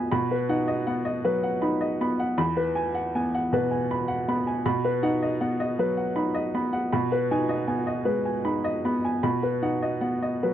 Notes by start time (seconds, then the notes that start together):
Already playing: G#3 B3 D#4 B4 D#5 G#5 B5
0.12 B2 B5
0.31 B4
0.49 D#4 F#5
0.68 D#5
0.87 B3 F#5
1.05 D#5
1.24 F#3 B4
1.43 F#5
1.62 D#4 B5
1.81 D#5
2.01 B3 B5
2.20 F#5
2.38 E2 B5
2.57 B4
2.75 G#5
2.95 F#5
3.15 B3 G#5
3.35 F#5
3.53 B2 B4
3.71 G#5
3.91 B5
4.08 F#5
4.28 B3 B5
4.47 G#5
4.66 B2 B5
4.85 B4
5.03 D#4 F#5
5.22 D#5
5.41 B3 F#5
5.60 D#5
5.79 F#3 B4
5.97 F#5
6.16 D#4 B5
6.34 D#5
6.54 B3 B5
6.73 F#5
6.93 B2 B5
7.12 B4
7.31 D#4 G#5
7.49 D#5
7.67 B3 G#5
7.87 D#5
8.05 G#3 B4
8.25 G#5
8.45 D#4 B5
8.64 D#5
8.85 B3 B5
9.05 G#5
9.23 B2 B5
9.43 B4
9.62 D#4 F#5
9.82 D#5
10.01 B3 F#5
10.22 D#5
10.43 F#3 B4